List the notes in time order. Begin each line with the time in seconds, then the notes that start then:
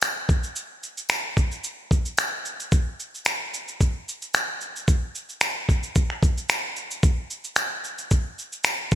0.01 finger snap, tambourine, shaker
0.29 kick, shaker
0.43 shaker
0.56 shaker
0.83 shaker
0.97 shaker
1.09 finger snap, tambourine, shaker
1.37 kick, shaker
1.51 shaker
1.64 shaker
1.91 kick, shaker
2.05 shaker
2.17 finger snap, tambourine, shaker
2.45 shaker
2.60 shaker
2.72 kick, shaker
3.00 shaker
3.15 shaker
3.25 finger snap, tambourine, shaker
3.54 shaker
3.68 shaker
3.81 kick, shaker
4.08 shaker
4.22 shaker
4.34 finger snap, tambourine, shaker
4.61 shaker
4.76 shaker
4.88 kick, shaker
5.15 shaker
5.29 shaker
5.41 finger snap, tambourine, shaker
5.69 kick, shaker
5.83 shaker
5.95 kick, shaker
6.10 finger snap
6.23 kick, shaker
6.38 shaker
6.49 finger snap, tambourine, shaker
6.76 shaker
6.91 shaker
7.03 kick, shaker
7.30 shaker
7.44 shaker
7.56 finger snap, tambourine, shaker
7.84 shaker
7.98 shaker
8.11 kick, shaker
8.38 shaker
8.52 shaker
8.64 finger snap, tambourine, shaker
8.91 kick, shaker